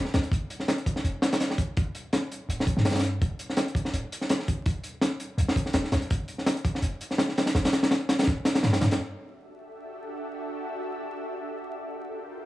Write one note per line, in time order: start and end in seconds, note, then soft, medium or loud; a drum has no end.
0.05 snare medium
0.14 0.23 B1 medium
0.14 snare loud
0.14 closed hi-hat medium
0.23 closed hi-hat soft
0.31 0.41 G1 loud
0.31 kick loud
0.31 closed hi-hat medium
0.50 closed hi-hat medium
0.60 snare soft
0.68 snare loud
0.68 closed hi-hat medium
0.78 closed hi-hat soft
0.86 kick medium
0.86 closed hi-hat medium
0.96 snare medium
1.04 1.13 F1 medium
1.04 closed hi-hat medium
1.22 snare loud
1.22 closed hi-hat medium
1.32 snare loud
1.32 closed hi-hat medium
1.40 snare loud
1.40 closed hi-hat medium
1.50 snare medium
1.58 kick loud
1.58 closed hi-hat medium
1.77 1.86 G1 loud
1.77 kick loud
1.77 closed hi-hat medium
1.95 closed hi-hat medium
2.13 snare loud
2.13 closed hi-hat medium
2.32 closed hi-hat medium
2.49 2.68 D1 medium
2.49 closed hi-hat medium
2.60 snare medium
2.67 2.76 D2 medium
2.67 kick loud
2.67 closed hi-hat medium
2.77 3.20 G2 medium
2.77 snare soft
2.85 snare medium
2.85 closed hi-hat medium
2.90 snare medium
2.90 closed hi-hat medium
2.95 snare medium
2.95 closed hi-hat medium
2.99 snare medium
2.99 closed hi-hat medium
3.04 closed hi-hat medium
3.22 3.30 E1 loud
3.22 kick loud
3.22 closed hi-hat medium
3.39 closed hi-hat medium
3.50 snare soft
3.57 snare loud
3.57 closed hi-hat medium
3.68 closed hi-hat soft
3.75 kick medium
3.75 closed hi-hat medium
3.85 snare medium
3.93 4.02 D1 medium
3.93 closed hi-hat medium
4.12 closed hi-hat medium
4.21 snare soft
4.29 snare loud
4.29 closed hi-hat medium
4.39 snare medium
4.48 kick medium
4.48 closed hi-hat medium
4.66 4.75 E1 loud
4.66 kick loud
4.66 closed hi-hat medium
4.84 closed hi-hat medium
5.01 snare loud
5.01 closed hi-hat medium
5.20 closed hi-hat medium
5.38 5.47 B1 medium
5.38 closed hi-hat medium
5.48 snare medium
5.56 kick medium
5.56 closed hi-hat medium
5.66 snare soft
5.73 5.83 E1 medium
5.73 snare loud
5.73 closed hi-hat medium
5.84 snare medium
5.92 6.01 B1 medium
5.92 snare loud
5.92 closed hi-hat medium
6.02 closed hi-hat soft
6.10 6.19 G1 loud
6.10 kick loud
6.10 closed hi-hat medium
6.28 closed hi-hat medium
6.38 snare soft
6.46 snare loud
6.46 closed hi-hat medium
6.57 closed hi-hat soft
6.65 kick loud
6.65 closed hi-hat medium
6.75 snare medium
6.82 6.91 F1 loud
6.82 closed hi-hat medium
7.01 closed hi-hat medium
7.11 snare soft
7.18 snare loud
7.18 closed hi-hat medium
7.29 snare medium
7.38 snare loud
7.38 closed hi-hat medium
7.46 snare loud
7.46 closed hi-hat medium
7.55 7.64 G1 loud
7.55 snare loud
7.55 closed hi-hat medium
7.65 snare loud
7.65 closed hi-hat medium
7.73 snare medium
7.73 closed hi-hat medium
7.83 snare loud
7.83 closed hi-hat medium
7.91 snare loud
7.91 closed hi-hat medium
8.09 snare loud
8.09 closed hi-hat medium
8.19 snare medium
8.19 closed hi-hat medium
8.23 snare medium
8.23 closed hi-hat medium
8.27 8.36 D1 medium
8.27 kick loud
8.27 closed hi-hat medium
8.45 snare loud
8.45 closed hi-hat medium
8.55 snare loud
8.55 closed hi-hat medium
8.63 8.80 G2 medium
8.63 snare loud
8.63 closed hi-hat medium
8.73 snare loud
8.73 closed hi-hat medium
8.81 8.98 G2 loud
8.81 snare loud
8.81 closed hi-hat medium
8.91 snare loud
8.91 closed hi-hat medium
9.00 11.87 D4 medium
9.00 11.87 F#4 medium
9.00 11.87 G4 medium
9.00 11.87 A4 medium
9.00 11.87 E5 medium
11.88 12.45 F4 medium
11.88 12.45 A4 medium
11.88 12.45 A#4 medium
11.88 12.45 C5 medium
11.88 12.45 G5 medium